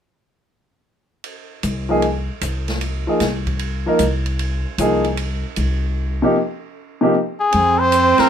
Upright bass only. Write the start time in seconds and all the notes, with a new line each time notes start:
1.63 C2
2.42 C2
3.20 C2
3.99 C2
4.78 C2
5.57 C2
7.54 F2
8.19 muted upright bass stroke